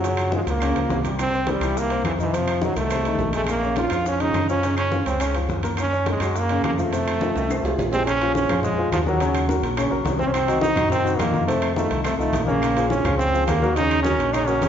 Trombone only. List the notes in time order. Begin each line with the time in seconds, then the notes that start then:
Already playing: F#3
0.35 G#3
0.49 A#3
1.21 C4
1.50 G3
1.78 A#3
2.06 E3
2.22 E3 F3
2.35 F3
2.64 F#3
2.77 A3
3.36 A3
3.49 A#3
3.79 F4
4.08 C#4
4.21 D#4
4.49 C#4
4.78 C#4
5.07 C4
5.21 C#4
5.80 C#4
6.10 G#3
6.38 A#3
6.65 A#3
6.78 A3
7.93 C4
8.06 C#4
8.36 C#4
8.63 G#3
8.93 F3
9.08 F#3
10.20 C4
10.27 C#4
10.33 C4
10.61 D#4
10.91 C4
11.17 A#3
11.47 A3
11.75 A3
12.04 A3
12.18 A3
12.46 A#3
12.89 C#4
13.18 C4
13.47 A#3
13.75 D#4
14.03 C#4
14.33 D#4
14.47 C#4